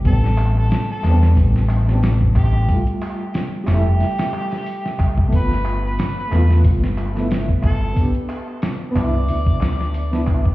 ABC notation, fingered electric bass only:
X:1
M:4/4
L:1/8
Q:"Swing 16ths" 1/4=91
K:Am
V:1 name="Fingered electric bass" clef=bass
A,,,2 z E,, A,,,4 | z3 F,,, z3 C,, | G,,,2 z E,, G,,,4 | z3 C,, D,,4 |]